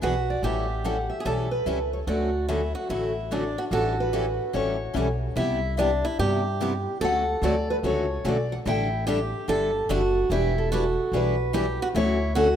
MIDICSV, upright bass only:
0, 0, Header, 1, 2, 480
1, 0, Start_track
1, 0, Tempo, 411241
1, 496, Time_signature, 4, 2, 24, 8
1, 14660, End_track
2, 0, Start_track
2, 0, Title_t, "Upright bass"
2, 0, Program_c, 0, 32
2, 29, Note_on_c, 0, 35, 72
2, 432, Note_off_c, 0, 35, 0
2, 495, Note_on_c, 0, 33, 76
2, 1264, Note_off_c, 0, 33, 0
2, 1458, Note_on_c, 0, 35, 65
2, 1866, Note_off_c, 0, 35, 0
2, 1937, Note_on_c, 0, 37, 68
2, 2346, Note_off_c, 0, 37, 0
2, 2417, Note_on_c, 0, 38, 79
2, 3186, Note_off_c, 0, 38, 0
2, 3380, Note_on_c, 0, 33, 61
2, 4148, Note_off_c, 0, 33, 0
2, 4329, Note_on_c, 0, 33, 88
2, 5102, Note_off_c, 0, 33, 0
2, 5297, Note_on_c, 0, 33, 73
2, 5706, Note_off_c, 0, 33, 0
2, 5774, Note_on_c, 0, 35, 76
2, 6184, Note_off_c, 0, 35, 0
2, 6252, Note_on_c, 0, 36, 85
2, 7023, Note_off_c, 0, 36, 0
2, 7223, Note_on_c, 0, 43, 77
2, 7990, Note_off_c, 0, 43, 0
2, 8182, Note_on_c, 0, 38, 85
2, 8565, Note_off_c, 0, 38, 0
2, 8656, Note_on_c, 0, 38, 88
2, 9065, Note_off_c, 0, 38, 0
2, 9139, Note_on_c, 0, 37, 79
2, 9547, Note_off_c, 0, 37, 0
2, 9621, Note_on_c, 0, 35, 76
2, 10028, Note_off_c, 0, 35, 0
2, 10105, Note_on_c, 0, 33, 91
2, 10870, Note_off_c, 0, 33, 0
2, 11067, Note_on_c, 0, 31, 77
2, 11472, Note_off_c, 0, 31, 0
2, 11545, Note_on_c, 0, 30, 69
2, 11950, Note_off_c, 0, 30, 0
2, 12018, Note_on_c, 0, 28, 85
2, 12786, Note_off_c, 0, 28, 0
2, 12976, Note_on_c, 0, 35, 76
2, 13744, Note_off_c, 0, 35, 0
2, 13942, Note_on_c, 0, 38, 91
2, 14660, Note_off_c, 0, 38, 0
2, 14660, End_track
0, 0, End_of_file